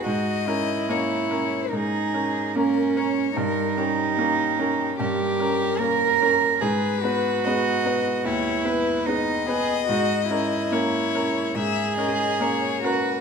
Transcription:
0.04 G#2 F#4 D#5
0.46 C#4 E4 A#4
0.89 A#3 C#4 A#4 C#5
1.31 C#4 A#4
1.72 G#2 D#4 G#4
2.14 C#4 A#4
2.56 A#3 C#4 A#4
2.96 C#4 A#4 C#5
3.35 G2 D#4 A#4
3.77 C#4 G4 A#4
4.18 A#3 C#4 A#4
4.59 C#4 A#4
5.00 G2 G4 A#4
5.40 C#4 A#4
5.80 A#3 C#4 A#4
6.21 C#4 A#4
6.61 G#2 G#4 B4
7.03 B3 F#4 B4
7.45 G#3 B3 B4 D#5
7.85 B3 B4
8.25 D#2 E4 C#5
8.65 B3 B4
9.06 G#3 B3 D#4 B4 D#5
9.47 B3 G#4 B4
9.88 G#2 F#4
10.28 C#4 E4 A#4
10.72 A#3 C#4 A#4 C#5
11.14 C#4 A#4
11.55 G#2 G#4 E5
11.97 C#4 A#4 D#5
12.40 A#3 C#4 A#4 C#5
12.84 C#4 F#4 A#4 B4

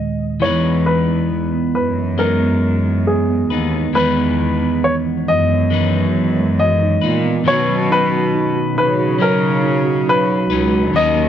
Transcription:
Already playing: D#2 A#2 D#3 D#5
0.00 G#3
0.40 E2 E3 G#3 B3 D#4 E4 C#5
0.45 B4
0.64 B3
0.86 E3 B4
1.08 B3
1.31 E3
1.54 B3
1.75 F#2 E3 B4
1.98 B3
2.18 G#3 B3 D#4 A#4
2.42 B3
2.87 B3
3.07 G#4
3.30 B3
3.50 D#2 B3 D#4 B4
3.73 B3
3.93 E2 D#3 E3 G#3 B3 B4
3.97 D#4 B4
4.17 B3
4.38 E3
4.62 B3
4.83 E3 C#5
5.06 B3
5.28 F#2 E3 D#5
5.51 B3
5.70 E3 G#3 B3 D#4 B4
5.95 B4
6.17 E3
6.39 G#3
6.59 E3 D#5
6.82 D#4
7.01 A#2 E3 D#4 B4
7.26 B3
7.44 B2 D#3 F#3 C#4 C#5
7.48 D#4 B4
7.69 F#3
7.90 D#4 B4
8.12 F#4
8.34 D#4
8.56 F#4
8.76 C#3 D#4 B4
8.99 F#4
9.19 F#3 C#4 D#4 A#4
9.41 F#4
9.62 D#4
9.85 F#4
10.07 D#4 B4
10.30 F#4
10.50 C#2 F#3 C#4 D#4 B4
10.72 F#4
10.93 D#2 D#3 F#3 C#4 D#5
10.98 D#4 A#4
11.15 A#3

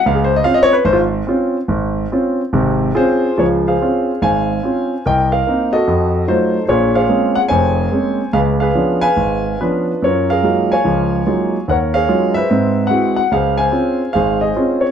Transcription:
0.06 C#2 F5
0.15 G#4
0.24 C5
0.36 D#5
0.44 C4 C#4 F4 F5
0.54 D#5
0.63 C#5
0.73 B4
0.85 G#1 C5
0.93 F4
1.27 C4 C#4 F4
1.68 G#1
2.12 C4 C#4 F4
2.53 G#1 C3
2.95 C4 C#4 F4 G#4 C5
3.37 C#2 F3 F4 G#4 C#5
3.67 G#4 C5 F5
3.82 C4 C#4 F4
4.22 G#1 C5 F5 G#5
4.63 C4 C#4 F4
5.06 C2 A#4 D#5 G5
5.32 A#4 F5
5.47 A#3 C4 D#4
5.73 F#4 A4 D#5
5.87 F2
6.27 F#3 A3 D#4 F4 A4 C5
6.65 F4 G#4 C5 C#5
6.70 A#1 A#2
6.95 G#4 C#5 F5
7.09 G#3 A#3 C4 C#4
7.35 F#5
7.49 F1 F2 C5 C#5 G#5
7.92 G#3 A#3 C4 C#4
8.33 C#2 G#4 B4 F5
8.60 G#4 B4 F5
8.75 F3 B3 C#4 D4
9.01 B4 F5 G#5
9.17 G#1
9.61 F3 B3 C#4 D4 F4 B4
10.02 F#2 F4 A#4 C#5
10.30 G#4 A#4 F5
10.43 F#3 G#3 A#3 D#4 F4
10.72 C#5 F5 G#5
10.85 C#2 F3
11.26 F#3 G#3 A#3 D#4 F4
11.68 D#2 A#4 C#5 F#5
11.94 G#4 C#5 F5
12.08 F#3 G#3 C#4 D#4 F4
12.34 B4 C5 E5
12.50 G#2 C4
12.87 G#3 C4 E4 F#4 F#5
13.16 F#5
13.31 C#2 G#4 C5 F5
13.58 C5 F5 G#5
13.72 C4 C#4 F4
14.13 G#1 G#4 C5 F5
14.41 G#4 C5 D#5
14.56 C4 C#4 F4
14.81 C#5

